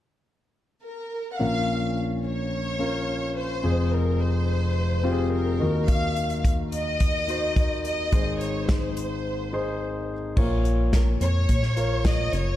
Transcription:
0.84 A#4
1.33 F#5
1.39 A#1 A#2 C#4 F4 A#4 F5
2.25 C#5
2.79 C#4 F4 A#4
3.37 C5
3.63 F1 F2 C4 F4 G#4
3.92 A#4
4.20 C5
5.03 C4 F4 G4
5.11 G#4
5.33 A#4
5.59 D#2 D#3 D#4 F#4 A#4
5.88 F5, kick, closed hi-hat
6.17 closed hi-hat
6.30 closed hi-hat
6.45 kick, closed hi-hat
6.72 D#5, closed hi-hat
7.00 kick, closed hi-hat
7.28 D#4 F#4 C5, closed hi-hat
7.56 kick, closed hi-hat
7.85 D#5, closed hi-hat
8.12 G#1 G#2 D#4 G#4 C5, kick, closed hi-hat
8.41 C#5, closed hi-hat
8.69 C5, kick, snare, closed hi-hat
8.97 closed hi-hat
9.53 D#4 G#4 C5
10.36 A#1 A#2 F4 A#4 C#5, kick, crash
10.65 closed hi-hat
10.93 A#4, kick, snare, closed hi-hat
11.21 F2 C#5, closed hi-hat
11.49 A#1, kick, closed hi-hat
11.63 snare
11.76 F4 A#4 C#5, closed hi-hat
12.05 D#5, kick, snare, closed hi-hat
12.33 F#1 C#5, closed hi-hat

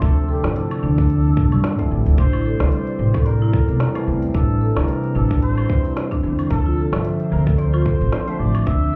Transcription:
Already playing: C3 D3 F3 A3 C4 D5 E5
0.02 D2 D4 A4, kick, closed hi-hat, shaker
0.17 shaker
0.29 G4 A4
0.42 G2 D3 F3 A3 C4 D5, snare, closed hi-hat, shaker
0.46 E4
0.56 A4, closed hi-hat, shaker
0.71 closed hi-hat, low woodblock, shaker
0.83 D2 D4
0.98 D4, kick, closed hi-hat, shaker
1.10 closed hi-hat, shaker
1.25 shaker
1.37 A1, kick
1.52 G2, closed hi-hat, low woodblock, shaker
1.64 D5, snare, closed hi-hat, shaker
1.78 A1 D3 F3 A3 C4 E4, kick, closed hi-hat, shaker
1.91 A1
2.06 D2, closed hi-hat, shaker
2.18 A1 C3 G3 C4 D4 C5, kick, closed hi-hat, shaker
2.33 E4, low woodblock, shaker
2.46 A4
2.58 D2 E3 G3 C4, snare, closed hi-hat, shaker
2.62 E4
2.72 C5, closed hi-hat, shaker
2.87 closed hi-hat, shaker
2.99 A1
3.14 A4, kick, closed hi-hat, low woodblock, shaker
3.26 A#4 D5, closed hi-hat, shaker
3.41 E4, shaker
3.53 A4, kick
3.68 E1, closed hi-hat, shaker
3.80 snare, closed hi-hat, shaker
3.93 E3 G3 A3 C4 E4, closed hi-hat, low woodblock, shaker
4.07 E2
4.22 closed hi-hat, shaker
4.34 A1 D4 A4, kick, closed hi-hat, shaker
4.50 shaker
4.61 A4
4.74 D2 E3 G3 C4 A#4 D5, snare, closed hi-hat, low woodblock, shaker
4.79 E4
4.88 closed hi-hat, shaker
5.04 closed hi-hat, shaker
5.15 A1 D4 A4
5.30 D4, kick, closed hi-hat, shaker
5.42 C5, closed hi-hat, shaker
5.58 low woodblock, shaker
5.68 E3 G3 A3 C4 E4, kick
5.84 E4, closed hi-hat, shaker
5.97 C5, snare, closed hi-hat, shaker
6.12 D4, kick, closed hi-hat, shaker
6.21 E2 D3 F3 A3 C4
6.25 E4
6.39 closed hi-hat, low woodblock, shaker
6.50 D2 D3 F3 C4 D4 A4 C5, kick, closed hi-hat, shaker
6.66 F4, shaker
6.78 A4
6.91 G2 D3 F3 A3 C4 E5, snare, closed hi-hat, low woodblock, shaker
7.05 closed hi-hat, shaker
7.20 closed hi-hat, shaker
7.32 D2 A#4
7.47 A4, kick, closed hi-hat, shaker
7.58 C5 D5, closed hi-hat, shaker
7.74 F4, low woodblock, shaker
7.85 A4, kick
8.01 A1, closed hi-hat, shaker
8.12 snare, closed hi-hat, shaker
8.26 D3 F3 A3 C4, closed hi-hat, shaker
8.30 E5
8.40 A1 D5
8.55 closed hi-hat, low woodblock, shaker
8.66 D2 D4 E5, kick, closed hi-hat, shaker
8.82 shaker

